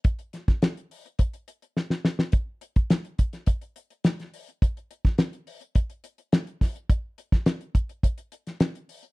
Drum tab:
HH |xxxxxxoxxxxx----|x-xxxxxxxxxxxxox|xxxxxxoxxxxxxxox|x-xxxxxxxxxxxxox|
SD |--ooo-------oooo|----o--o----oo--|---oo-------o-o-|---oo------oo---|
BD |o--o----o-------|o--o--o-o-------|o--o----o-----o-|o--o--o-o-------|